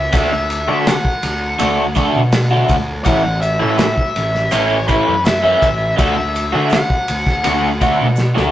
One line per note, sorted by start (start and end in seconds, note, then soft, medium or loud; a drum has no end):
0.00 0.17 E5 medium
0.12 0.68 D2 medium
0.12 0.32 D3 medium
0.12 0.31 A3 medium
0.12 0.31 D4 medium
0.12 0.30 F#4 loud
0.12 kick loud
0.12 ride medium
0.12 shaker medium
0.18 0.88 E5 medium
0.31 muted overdriven electric guitar stroke soft
0.50 ride medium
0.50 shaker medium
0.68 0.99 D3 medium
0.68 0.93 D3 medium
0.68 0.93 A3 medium
0.68 0.92 D4 medium
0.68 0.92 F#4 loud
0.87 2.66 F#5 medium
0.87 snare loud
0.87 ride medium
0.87 shaker medium
1.05 kick medium
1.22 1.54 D2 medium
1.22 snare soft
1.22 ride medium
1.22 shaker medium
1.59 2.07 D2 loud
1.59 1.83 D3 medium
1.59 1.84 A3 medium
1.59 1.84 D4 medium
1.59 1.84 F#4 medium
1.59 ride medium
1.59 shaker medium
1.95 2.20 D3 medium
1.95 2.20 A3 medium
1.95 2.20 D4 medium
1.95 2.21 F#4 medium
1.95 kick medium
1.95 ride medium
1.95 shaker medium
2.16 2.61 B2 medium
2.32 snare loud
2.32 ride medium
2.32 shaker medium
2.51 2.75 D3 medium
2.51 2.75 A3 medium
2.51 2.75 D4 medium
2.51 2.75 F#4 medium
2.68 3.00 D2 medium
2.68 kick medium
2.68 ride medium
2.68 shaker medium
3.05 3.62 A1 loud
3.05 3.24 E3 medium
3.05 3.23 A3 medium
3.05 3.23 C#4 medium
3.05 3.22 E4 medium
3.05 3.39 F#5 loud
3.05 kick loud
3.05 ride medium
3.05 shaker medium
3.24 muted overdriven electric guitar stroke soft
3.41 3.76 E5 medium
3.41 ride medium
3.41 shaker medium
3.59 3.92 A2 medium
3.59 3.85 E3 medium
3.59 3.84 A3 medium
3.59 3.84 C#4 medium
3.59 3.84 E4 medium
3.78 4.54 E5 medium
3.78 snare loud
3.78 ride medium
3.78 shaker medium
3.98 kick medium
4.16 4.47 A1 medium
4.16 snare soft
4.16 ride medium
4.35 snare soft
4.51 4.99 A1 medium
4.51 4.76 E3 medium
4.51 4.76 A3 medium
4.51 4.76 C#4 medium
4.51 4.76 E4 medium
4.51 4.87 C#5 medium
4.51 ride medium
4.51 shaker loud
4.88 5.12 E3 medium
4.88 5.13 A3 medium
4.88 5.13 C#4 loud
4.88 5.13 E4 medium
4.88 5.25 B4 medium
4.88 kick medium
4.88 ride medium
4.88 shaker medium
5.09 5.54 F#2 medium
5.25 5.95 E5 loud
5.25 snare loud
5.25 ride loud
5.25 shaker medium
5.43 5.68 E3 medium
5.43 5.68 A3 medium
5.43 5.68 C#4 medium
5.43 5.67 E4 medium
5.62 5.93 A1 medium
5.62 kick medium
5.62 ride medium
5.62 shaker medium
5.98 6.55 D2 medium
5.98 6.16 D3 medium
5.98 6.16 A3 medium
5.98 6.16 D4 medium
5.98 6.16 F#4 medium
5.98 6.68 E5 medium
5.98 kick loud
5.98 ride medium
5.98 shaker medium
6.17 muted overdriven electric guitar stroke soft
6.36 ride medium
6.36 shaker medium
6.53 6.78 D3 medium
6.53 6.85 D3 medium
6.53 6.77 A3 medium
6.53 6.77 D4 medium
6.53 6.77 F#4 medium
6.70 8.51 F#5 medium
6.70 snare loud
6.70 ride medium
6.70 shaker medium
6.90 kick medium
7.08 7.40 D2 medium
7.08 ride medium
7.08 shaker medium
7.27 kick medium
7.27 snare soft
7.44 7.92 D2 medium
7.44 7.68 D3 medium
7.44 7.69 A3 medium
7.44 7.69 D4 medium
7.44 7.69 F#4 medium
7.44 ride medium
7.44 shaker medium
7.81 8.05 D3 medium
7.81 8.05 A3 medium
7.81 8.05 D4 medium
7.81 8.05 F#4 medium
7.81 kick medium
7.81 ride medium
7.81 shaker medium
8.01 8.31 B2 medium
8.16 snare medium
8.16 shaker medium
8.35 8.51 C#2 medium
8.35 8.51 D3 medium
8.35 8.51 A3 medium
8.35 8.51 D4 medium
8.35 8.51 F#4 medium
8.35 snare medium